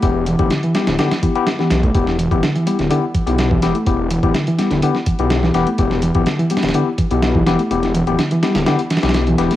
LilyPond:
<<
  \new Staff \with { instrumentName = "Tine electric piano" } { \time 4/4 \key e \minor \tempo 4 = 125 <b e' g'>8 r16 <b e' g'>16 r8 <b e' g'>8 <b e' g'>16 r16 <b e' g'>16 <b e' g'>16 r16 <b e' g'>8 r16 | <b e' g'>8 r16 <b e' g'>16 r8 <b e' g'>8 <b e' g'>16 r8 <b e' g'>8. <b e' g'>16 r16 | <b e' g'>8 r16 <b e' g'>16 r8 <b e' g'>8 <b e' g'>16 r8 <b e' g'>8. <b e' g'>16 r16 | <b e' g'>8 r16 <b e' g'>16 r8 <b e' g'>8 <b e' g'>16 r8 <b e' g'>8. <b e' g'>16 r16 |
<b e' g'>8 r16 <b e' g'>16 r8 <b e' g'>8 <b e' g'>16 r8 <b e' g'>8. <b e' g'>16 r16 | }
  \new Staff \with { instrumentName = "Reed electric piano" } { \clef bass \time 4/4 \key e \minor r8 e8 d16 e16 g16 d16 d16 r16 e16 r8 e8 a16 | r8 e8 d16 e16 g16 d16 d16 r16 e16 r8 e8 a16 | r8 e8 d16 e16 g16 d16 d16 r16 e16 r8 e8 a16 | r8 e8 d16 e16 g16 d16 d16 r16 e16 r8 e8 a16 |
r8 e8 d16 e16 g16 d16 d16 r16 e16 r8 e8 a16 | }
  \new Staff \with { instrumentName = "Detuned saw bass" } { \clef bass \time 4/4 \key e \minor e,,8. d,,16 r8. d,,16 r4. b,,8 | e,,8. d,,16 r8. d,,16 r8. b,,8. e,,16 r16 | e,,8. d,,16 r8. d,,16 r8. b,,8. e,,16 r16 | e,,8. d,,16 r8. d,,16 r8. b,,8. e,,16 r16 |
e,,8. d,,16 r8. d,,16 r8. b,,8. e,,16 r16 | }
  \new DrumStaff \with { instrumentName = "Drums" } \drummode { \time 4/4 <hh bd>8 hh16 <hh bd>16 <hh sn>16 hh16 <hh sn>16 <hh sn>16 <hh sn>16 <hh sn>16 <hh bd>16 hh16 <hh sn>16 sn16 <hh sn>16 <hh bd>16 | <hh bd>16 sn16 hh16 <hh bd>16 <hh sn>16 hh16 hh16 <hh sn>16 hh8 <hh bd>16 hh16 <hh sn>16 bd16 <hh sn>16 hh16 | <hh bd>8 hh16 <hh bd>16 <hh sn>16 hh16 <hh sn>16 <hh sn>16 hh16 sn16 <hh bd>16 hh16 <hh sn>16 sn16 <hh sn>16 hh16 | <hh bd>16 sn16 hh16 <hh bd>16 <hh sn>16 hh16 hh32 <hh sn>32 <hh sn>32 <hh sn>32 hh8 <hh bd>16 hh16 <hh sn>16 bd16 <hh sn>16 hh16 |
hh16 <hh sn>16 hh16 hh16 <hh sn>16 hh16 <hh sn>16 <hh sn>16 <hh sn>16 hh16 <hh sn>32 <hh sn>32 <hh sn>32 <hh sn>32 <hh sn>16 hh16 <hh sn>16 <hh sn>16 | }
>>